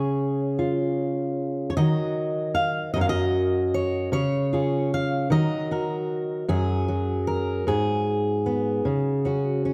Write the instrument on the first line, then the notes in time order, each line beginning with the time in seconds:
steel-string acoustic guitar
Already playing: C#3 G#4 C#5
0.59 F4
1.70 C#5
1.77 D#3 F#3 F#4 A#4 D#5
2.55 F5
2.94 F#2 F#3 F#4 D#5
2.98 A#4 F5
3.09 D#5
3.74 C#5
4.12 C#3 C#5
4.53 F4 G#4
4.94 F5
5.30 D#3 F#3 F#4 A#4 D#5
5.71 F#4 A#4
6.48 F#2 F#3 G#4
6.88 F#3
7.27 A#4
7.67 G#2 G#4
8.46 B3
8.85 C#3
9.25 C#4 F#4
9.65 C#4